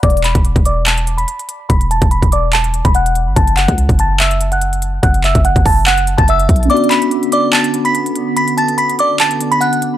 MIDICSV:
0, 0, Header, 1, 6, 480
1, 0, Start_track
1, 0, Tempo, 416667
1, 36, Time_signature, 4, 2, 24, 8
1, 11492, End_track
2, 0, Start_track
2, 0, Title_t, "Synth bell"
2, 0, Program_c, 0, 98
2, 40, Note_on_c, 0, 86, 100
2, 50, Note_on_c, 0, 74, 72
2, 237, Note_off_c, 0, 86, 0
2, 242, Note_off_c, 0, 74, 0
2, 282, Note_on_c, 0, 83, 81
2, 291, Note_on_c, 0, 95, 64
2, 731, Note_off_c, 0, 83, 0
2, 735, Note_off_c, 0, 95, 0
2, 755, Note_on_c, 0, 86, 75
2, 764, Note_on_c, 0, 74, 57
2, 954, Note_off_c, 0, 86, 0
2, 959, Note_off_c, 0, 74, 0
2, 1000, Note_on_c, 0, 81, 76
2, 1009, Note_on_c, 0, 93, 61
2, 1343, Note_off_c, 0, 81, 0
2, 1348, Note_off_c, 0, 93, 0
2, 1353, Note_on_c, 0, 83, 82
2, 1363, Note_on_c, 0, 95, 62
2, 1915, Note_off_c, 0, 83, 0
2, 1920, Note_off_c, 0, 95, 0
2, 1947, Note_on_c, 0, 83, 84
2, 1956, Note_on_c, 0, 95, 67
2, 2149, Note_off_c, 0, 83, 0
2, 2154, Note_off_c, 0, 95, 0
2, 2197, Note_on_c, 0, 81, 77
2, 2207, Note_on_c, 0, 93, 54
2, 2395, Note_off_c, 0, 81, 0
2, 2401, Note_off_c, 0, 93, 0
2, 2432, Note_on_c, 0, 83, 82
2, 2441, Note_on_c, 0, 95, 68
2, 2632, Note_off_c, 0, 83, 0
2, 2638, Note_off_c, 0, 95, 0
2, 2676, Note_on_c, 0, 86, 80
2, 2685, Note_on_c, 0, 74, 64
2, 2874, Note_off_c, 0, 86, 0
2, 2880, Note_off_c, 0, 74, 0
2, 2916, Note_on_c, 0, 81, 84
2, 2925, Note_on_c, 0, 93, 74
2, 3261, Note_off_c, 0, 81, 0
2, 3266, Note_off_c, 0, 93, 0
2, 3280, Note_on_c, 0, 83, 83
2, 3289, Note_on_c, 0, 95, 61
2, 3375, Note_off_c, 0, 83, 0
2, 3380, Note_off_c, 0, 95, 0
2, 3396, Note_on_c, 0, 78, 88
2, 3406, Note_on_c, 0, 90, 70
2, 3847, Note_off_c, 0, 78, 0
2, 3853, Note_off_c, 0, 90, 0
2, 3873, Note_on_c, 0, 81, 103
2, 3882, Note_on_c, 0, 93, 76
2, 4073, Note_off_c, 0, 81, 0
2, 4078, Note_off_c, 0, 93, 0
2, 4107, Note_on_c, 0, 78, 80
2, 4116, Note_on_c, 0, 90, 64
2, 4562, Note_off_c, 0, 78, 0
2, 4567, Note_off_c, 0, 90, 0
2, 4603, Note_on_c, 0, 81, 85
2, 4613, Note_on_c, 0, 93, 69
2, 4799, Note_off_c, 0, 81, 0
2, 4804, Note_off_c, 0, 93, 0
2, 4836, Note_on_c, 0, 76, 76
2, 4846, Note_on_c, 0, 88, 62
2, 5181, Note_off_c, 0, 76, 0
2, 5186, Note_off_c, 0, 88, 0
2, 5206, Note_on_c, 0, 78, 85
2, 5215, Note_on_c, 0, 90, 60
2, 5762, Note_off_c, 0, 78, 0
2, 5767, Note_off_c, 0, 90, 0
2, 5791, Note_on_c, 0, 78, 84
2, 5801, Note_on_c, 0, 90, 67
2, 5991, Note_off_c, 0, 78, 0
2, 5997, Note_off_c, 0, 90, 0
2, 6041, Note_on_c, 0, 76, 75
2, 6050, Note_on_c, 0, 88, 59
2, 6237, Note_off_c, 0, 76, 0
2, 6243, Note_off_c, 0, 88, 0
2, 6275, Note_on_c, 0, 78, 81
2, 6284, Note_on_c, 0, 90, 61
2, 6474, Note_off_c, 0, 78, 0
2, 6479, Note_off_c, 0, 90, 0
2, 6517, Note_on_c, 0, 81, 80
2, 6526, Note_on_c, 0, 93, 64
2, 6715, Note_off_c, 0, 81, 0
2, 6720, Note_off_c, 0, 93, 0
2, 6756, Note_on_c, 0, 78, 82
2, 6766, Note_on_c, 0, 90, 67
2, 7101, Note_off_c, 0, 78, 0
2, 7107, Note_off_c, 0, 90, 0
2, 7115, Note_on_c, 0, 81, 79
2, 7124, Note_on_c, 0, 93, 59
2, 7211, Note_off_c, 0, 81, 0
2, 7217, Note_off_c, 0, 93, 0
2, 7244, Note_on_c, 0, 76, 77
2, 7255, Note_on_c, 0, 88, 68
2, 7692, Note_off_c, 0, 76, 0
2, 7697, Note_off_c, 0, 88, 0
2, 7716, Note_on_c, 0, 86, 94
2, 7726, Note_on_c, 0, 74, 81
2, 7915, Note_off_c, 0, 86, 0
2, 7920, Note_off_c, 0, 74, 0
2, 7949, Note_on_c, 0, 83, 81
2, 7958, Note_on_c, 0, 95, 62
2, 8404, Note_off_c, 0, 83, 0
2, 8408, Note_off_c, 0, 95, 0
2, 8438, Note_on_c, 0, 86, 77
2, 8447, Note_on_c, 0, 74, 64
2, 8636, Note_off_c, 0, 86, 0
2, 8641, Note_off_c, 0, 74, 0
2, 8671, Note_on_c, 0, 81, 80
2, 8680, Note_on_c, 0, 93, 61
2, 9018, Note_off_c, 0, 81, 0
2, 9023, Note_off_c, 0, 93, 0
2, 9041, Note_on_c, 0, 83, 78
2, 9051, Note_on_c, 0, 95, 67
2, 9599, Note_off_c, 0, 83, 0
2, 9604, Note_off_c, 0, 95, 0
2, 9637, Note_on_c, 0, 83, 80
2, 9646, Note_on_c, 0, 95, 70
2, 9835, Note_off_c, 0, 83, 0
2, 9840, Note_off_c, 0, 95, 0
2, 9877, Note_on_c, 0, 81, 77
2, 9887, Note_on_c, 0, 93, 67
2, 10075, Note_off_c, 0, 81, 0
2, 10081, Note_off_c, 0, 93, 0
2, 10111, Note_on_c, 0, 83, 87
2, 10121, Note_on_c, 0, 95, 66
2, 10311, Note_off_c, 0, 83, 0
2, 10317, Note_off_c, 0, 95, 0
2, 10362, Note_on_c, 0, 86, 83
2, 10371, Note_on_c, 0, 74, 60
2, 10558, Note_off_c, 0, 86, 0
2, 10563, Note_off_c, 0, 74, 0
2, 10598, Note_on_c, 0, 81, 80
2, 10608, Note_on_c, 0, 93, 67
2, 10942, Note_off_c, 0, 81, 0
2, 10948, Note_off_c, 0, 93, 0
2, 10961, Note_on_c, 0, 83, 86
2, 10969, Note_on_c, 0, 95, 67
2, 11055, Note_off_c, 0, 83, 0
2, 11060, Note_off_c, 0, 95, 0
2, 11066, Note_on_c, 0, 78, 82
2, 11075, Note_on_c, 0, 90, 65
2, 11492, Note_off_c, 0, 78, 0
2, 11492, Note_off_c, 0, 90, 0
2, 11492, End_track
3, 0, Start_track
3, 0, Title_t, "Tine electric piano"
3, 0, Program_c, 1, 4
3, 7666, Note_on_c, 1, 61, 66
3, 7699, Note_on_c, 1, 59, 61
3, 7731, Note_on_c, 1, 62, 55
3, 7764, Note_on_c, 1, 66, 71
3, 7921, Control_c, 1, 64, 127
3, 11485, Note_off_c, 1, 61, 0
3, 11492, Note_off_c, 1, 59, 0
3, 11492, Note_off_c, 1, 62, 0
3, 11492, Note_off_c, 1, 66, 0
3, 11492, End_track
4, 0, Start_track
4, 0, Title_t, "Analog synth pad"
4, 0, Program_c, 2, 89
4, 7716, Note_on_c, 2, 50, 83
4, 7716, Note_on_c, 2, 59, 77
4, 11492, Note_off_c, 2, 50, 0
4, 11492, Note_off_c, 2, 59, 0
4, 11492, End_track
5, 0, Start_track
5, 0, Title_t, "808-style bass"
5, 0, Program_c, 3, 38
5, 36, Note_on_c, 3, 28, 110
5, 388, Note_off_c, 3, 28, 0
5, 404, Note_on_c, 3, 28, 101
5, 634, Note_off_c, 3, 28, 0
5, 642, Note_on_c, 3, 28, 102
5, 1442, Note_off_c, 3, 28, 0
5, 1956, Note_on_c, 3, 28, 114
5, 2308, Note_off_c, 3, 28, 0
5, 2323, Note_on_c, 3, 28, 103
5, 2554, Note_off_c, 3, 28, 0
5, 2562, Note_on_c, 3, 28, 104
5, 3254, Note_off_c, 3, 28, 0
5, 3282, Note_on_c, 3, 28, 107
5, 3763, Note_on_c, 3, 31, 100
5, 3781, Note_off_c, 3, 28, 0
5, 3870, Note_off_c, 3, 31, 0
5, 3876, Note_on_c, 3, 30, 114
5, 4228, Note_off_c, 3, 30, 0
5, 4244, Note_on_c, 3, 37, 102
5, 4474, Note_off_c, 3, 37, 0
5, 4482, Note_on_c, 3, 30, 103
5, 5749, Note_off_c, 3, 30, 0
5, 5795, Note_on_c, 3, 30, 112
5, 6148, Note_off_c, 3, 30, 0
5, 6164, Note_on_c, 3, 30, 105
5, 6394, Note_off_c, 3, 30, 0
5, 6403, Note_on_c, 3, 30, 103
5, 7094, Note_off_c, 3, 30, 0
5, 7123, Note_on_c, 3, 30, 103
5, 7461, Note_off_c, 3, 30, 0
5, 7476, Note_on_c, 3, 35, 97
5, 7706, Note_off_c, 3, 35, 0
5, 11492, End_track
6, 0, Start_track
6, 0, Title_t, "Drums"
6, 35, Note_on_c, 9, 42, 59
6, 36, Note_on_c, 9, 36, 106
6, 115, Note_off_c, 9, 42, 0
6, 115, Note_on_c, 9, 42, 56
6, 151, Note_off_c, 9, 36, 0
6, 196, Note_off_c, 9, 42, 0
6, 196, Note_on_c, 9, 42, 62
6, 275, Note_on_c, 9, 39, 87
6, 279, Note_off_c, 9, 42, 0
6, 279, Note_on_c, 9, 42, 72
6, 390, Note_off_c, 9, 39, 0
6, 395, Note_off_c, 9, 42, 0
6, 404, Note_on_c, 9, 36, 99
6, 404, Note_on_c, 9, 42, 58
6, 514, Note_off_c, 9, 42, 0
6, 514, Note_on_c, 9, 42, 88
6, 519, Note_off_c, 9, 36, 0
6, 629, Note_off_c, 9, 42, 0
6, 642, Note_on_c, 9, 36, 94
6, 646, Note_on_c, 9, 42, 53
6, 754, Note_off_c, 9, 42, 0
6, 754, Note_on_c, 9, 42, 80
6, 758, Note_off_c, 9, 36, 0
6, 869, Note_off_c, 9, 42, 0
6, 995, Note_on_c, 9, 42, 72
6, 996, Note_on_c, 9, 39, 113
6, 1110, Note_off_c, 9, 42, 0
6, 1111, Note_off_c, 9, 39, 0
6, 1124, Note_on_c, 9, 42, 63
6, 1235, Note_off_c, 9, 42, 0
6, 1235, Note_on_c, 9, 42, 85
6, 1350, Note_off_c, 9, 42, 0
6, 1363, Note_on_c, 9, 42, 60
6, 1474, Note_off_c, 9, 42, 0
6, 1474, Note_on_c, 9, 42, 81
6, 1589, Note_off_c, 9, 42, 0
6, 1606, Note_on_c, 9, 42, 61
6, 1713, Note_off_c, 9, 42, 0
6, 1713, Note_on_c, 9, 42, 71
6, 1828, Note_off_c, 9, 42, 0
6, 1956, Note_on_c, 9, 36, 108
6, 1956, Note_on_c, 9, 42, 90
6, 2071, Note_off_c, 9, 36, 0
6, 2071, Note_off_c, 9, 42, 0
6, 2083, Note_on_c, 9, 42, 60
6, 2199, Note_off_c, 9, 42, 0
6, 2199, Note_on_c, 9, 42, 70
6, 2314, Note_off_c, 9, 42, 0
6, 2323, Note_on_c, 9, 42, 57
6, 2324, Note_on_c, 9, 36, 98
6, 2433, Note_off_c, 9, 42, 0
6, 2433, Note_on_c, 9, 42, 87
6, 2439, Note_off_c, 9, 36, 0
6, 2548, Note_off_c, 9, 42, 0
6, 2562, Note_on_c, 9, 36, 88
6, 2566, Note_on_c, 9, 42, 54
6, 2674, Note_off_c, 9, 42, 0
6, 2674, Note_on_c, 9, 42, 80
6, 2677, Note_off_c, 9, 36, 0
6, 2789, Note_off_c, 9, 42, 0
6, 2914, Note_on_c, 9, 42, 72
6, 2915, Note_on_c, 9, 39, 113
6, 3030, Note_off_c, 9, 39, 0
6, 3030, Note_off_c, 9, 42, 0
6, 3042, Note_on_c, 9, 42, 62
6, 3153, Note_off_c, 9, 42, 0
6, 3153, Note_on_c, 9, 42, 84
6, 3269, Note_off_c, 9, 42, 0
6, 3282, Note_on_c, 9, 36, 98
6, 3282, Note_on_c, 9, 42, 61
6, 3393, Note_off_c, 9, 42, 0
6, 3393, Note_on_c, 9, 42, 82
6, 3397, Note_off_c, 9, 36, 0
6, 3508, Note_off_c, 9, 42, 0
6, 3525, Note_on_c, 9, 42, 61
6, 3633, Note_off_c, 9, 42, 0
6, 3633, Note_on_c, 9, 42, 69
6, 3748, Note_off_c, 9, 42, 0
6, 3875, Note_on_c, 9, 42, 83
6, 3876, Note_on_c, 9, 36, 108
6, 3991, Note_off_c, 9, 36, 0
6, 3991, Note_off_c, 9, 42, 0
6, 4003, Note_on_c, 9, 42, 62
6, 4115, Note_on_c, 9, 39, 88
6, 4118, Note_off_c, 9, 42, 0
6, 4119, Note_on_c, 9, 42, 74
6, 4230, Note_off_c, 9, 39, 0
6, 4234, Note_off_c, 9, 42, 0
6, 4243, Note_on_c, 9, 42, 59
6, 4244, Note_on_c, 9, 36, 99
6, 4355, Note_off_c, 9, 42, 0
6, 4355, Note_on_c, 9, 42, 86
6, 4359, Note_off_c, 9, 36, 0
6, 4470, Note_off_c, 9, 42, 0
6, 4483, Note_on_c, 9, 36, 90
6, 4486, Note_on_c, 9, 42, 53
6, 4595, Note_off_c, 9, 42, 0
6, 4595, Note_on_c, 9, 42, 81
6, 4598, Note_off_c, 9, 36, 0
6, 4710, Note_off_c, 9, 42, 0
6, 4836, Note_on_c, 9, 39, 115
6, 4836, Note_on_c, 9, 42, 70
6, 4951, Note_off_c, 9, 42, 0
6, 4952, Note_off_c, 9, 39, 0
6, 4964, Note_on_c, 9, 42, 64
6, 5075, Note_off_c, 9, 42, 0
6, 5075, Note_on_c, 9, 42, 81
6, 5191, Note_off_c, 9, 42, 0
6, 5204, Note_on_c, 9, 42, 60
6, 5316, Note_off_c, 9, 42, 0
6, 5316, Note_on_c, 9, 42, 81
6, 5431, Note_off_c, 9, 42, 0
6, 5447, Note_on_c, 9, 42, 63
6, 5553, Note_off_c, 9, 42, 0
6, 5553, Note_on_c, 9, 42, 73
6, 5668, Note_off_c, 9, 42, 0
6, 5796, Note_on_c, 9, 36, 109
6, 5796, Note_on_c, 9, 42, 86
6, 5911, Note_off_c, 9, 36, 0
6, 5911, Note_off_c, 9, 42, 0
6, 5924, Note_on_c, 9, 42, 59
6, 6035, Note_on_c, 9, 39, 84
6, 6039, Note_off_c, 9, 42, 0
6, 6039, Note_on_c, 9, 42, 70
6, 6150, Note_off_c, 9, 39, 0
6, 6155, Note_off_c, 9, 42, 0
6, 6164, Note_on_c, 9, 36, 95
6, 6164, Note_on_c, 9, 42, 56
6, 6275, Note_off_c, 9, 42, 0
6, 6275, Note_on_c, 9, 42, 90
6, 6279, Note_off_c, 9, 36, 0
6, 6390, Note_off_c, 9, 42, 0
6, 6403, Note_on_c, 9, 36, 90
6, 6408, Note_on_c, 9, 42, 54
6, 6515, Note_off_c, 9, 36, 0
6, 6515, Note_on_c, 9, 36, 90
6, 6515, Note_on_c, 9, 46, 81
6, 6523, Note_off_c, 9, 42, 0
6, 6630, Note_off_c, 9, 36, 0
6, 6630, Note_off_c, 9, 46, 0
6, 6755, Note_on_c, 9, 42, 68
6, 6756, Note_on_c, 9, 39, 114
6, 6871, Note_off_c, 9, 39, 0
6, 6871, Note_off_c, 9, 42, 0
6, 6884, Note_on_c, 9, 42, 63
6, 6995, Note_off_c, 9, 42, 0
6, 6995, Note_on_c, 9, 42, 85
6, 7111, Note_off_c, 9, 42, 0
6, 7122, Note_on_c, 9, 36, 95
6, 7124, Note_on_c, 9, 42, 59
6, 7234, Note_off_c, 9, 42, 0
6, 7234, Note_on_c, 9, 42, 79
6, 7238, Note_off_c, 9, 36, 0
6, 7350, Note_off_c, 9, 42, 0
6, 7367, Note_on_c, 9, 42, 62
6, 7476, Note_off_c, 9, 42, 0
6, 7476, Note_on_c, 9, 36, 106
6, 7476, Note_on_c, 9, 42, 59
6, 7556, Note_off_c, 9, 42, 0
6, 7556, Note_on_c, 9, 42, 61
6, 7591, Note_off_c, 9, 36, 0
6, 7636, Note_off_c, 9, 42, 0
6, 7636, Note_on_c, 9, 42, 61
6, 7716, Note_off_c, 9, 42, 0
6, 7716, Note_on_c, 9, 42, 58
6, 7795, Note_off_c, 9, 42, 0
6, 7795, Note_on_c, 9, 42, 58
6, 7876, Note_off_c, 9, 42, 0
6, 7876, Note_on_c, 9, 42, 61
6, 7956, Note_on_c, 9, 39, 88
6, 7960, Note_off_c, 9, 42, 0
6, 7960, Note_on_c, 9, 42, 75
6, 8071, Note_off_c, 9, 39, 0
6, 8075, Note_off_c, 9, 42, 0
6, 8084, Note_on_c, 9, 42, 56
6, 8195, Note_off_c, 9, 42, 0
6, 8195, Note_on_c, 9, 42, 89
6, 8310, Note_off_c, 9, 42, 0
6, 8327, Note_on_c, 9, 42, 55
6, 8434, Note_off_c, 9, 42, 0
6, 8434, Note_on_c, 9, 42, 80
6, 8549, Note_off_c, 9, 42, 0
6, 8674, Note_on_c, 9, 42, 72
6, 8675, Note_on_c, 9, 39, 115
6, 8790, Note_off_c, 9, 39, 0
6, 8790, Note_off_c, 9, 42, 0
6, 8803, Note_on_c, 9, 42, 65
6, 8915, Note_off_c, 9, 42, 0
6, 8915, Note_on_c, 9, 42, 84
6, 9030, Note_off_c, 9, 42, 0
6, 9043, Note_on_c, 9, 42, 60
6, 9154, Note_off_c, 9, 42, 0
6, 9154, Note_on_c, 9, 42, 81
6, 9269, Note_off_c, 9, 42, 0
6, 9287, Note_on_c, 9, 42, 61
6, 9394, Note_off_c, 9, 42, 0
6, 9394, Note_on_c, 9, 42, 72
6, 9510, Note_off_c, 9, 42, 0
6, 9637, Note_on_c, 9, 42, 84
6, 9752, Note_off_c, 9, 42, 0
6, 9764, Note_on_c, 9, 42, 61
6, 9879, Note_off_c, 9, 42, 0
6, 9880, Note_on_c, 9, 42, 72
6, 9996, Note_off_c, 9, 42, 0
6, 10004, Note_on_c, 9, 42, 56
6, 10114, Note_off_c, 9, 42, 0
6, 10114, Note_on_c, 9, 42, 85
6, 10230, Note_off_c, 9, 42, 0
6, 10247, Note_on_c, 9, 42, 55
6, 10354, Note_off_c, 9, 42, 0
6, 10354, Note_on_c, 9, 42, 81
6, 10469, Note_off_c, 9, 42, 0
6, 10594, Note_on_c, 9, 42, 70
6, 10595, Note_on_c, 9, 39, 114
6, 10710, Note_off_c, 9, 39, 0
6, 10710, Note_off_c, 9, 42, 0
6, 10722, Note_on_c, 9, 42, 66
6, 10834, Note_off_c, 9, 42, 0
6, 10834, Note_on_c, 9, 42, 82
6, 10950, Note_off_c, 9, 42, 0
6, 10963, Note_on_c, 9, 42, 60
6, 11074, Note_off_c, 9, 42, 0
6, 11074, Note_on_c, 9, 42, 81
6, 11189, Note_off_c, 9, 42, 0
6, 11206, Note_on_c, 9, 42, 62
6, 11314, Note_off_c, 9, 42, 0
6, 11314, Note_on_c, 9, 42, 70
6, 11429, Note_off_c, 9, 42, 0
6, 11492, End_track
0, 0, End_of_file